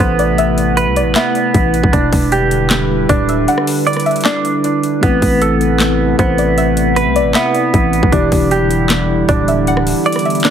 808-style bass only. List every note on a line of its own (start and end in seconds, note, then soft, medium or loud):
0.00 0.88 A1 loud
0.87 1.03 C2 loud
1.01 1.15 A1 loud
1.54 1.82 A1 loud
1.84 1.93 A1 loud
1.93 2.12 E1 loud
2.13 3.05 E1 loud
3.09 3.46 D1 loud
5.03 5.21 A1 loud
5.22 6.15 A1 loud
6.19 7.08 A1 loud
7.06 7.22 C2 loud
7.21 7.34 A1 loud
7.74 8.02 A1 loud
8.03 8.12 A1 loud
8.13 8.31 E1 loud
8.32 9.25 E1 loud
9.29 9.94 D1 loud